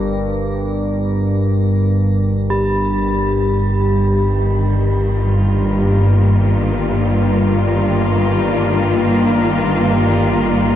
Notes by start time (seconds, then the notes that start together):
Already playing: G1 G2 A#4
2.50 G2 G4
4.13 D#3
5.14 F4
5.40 A#3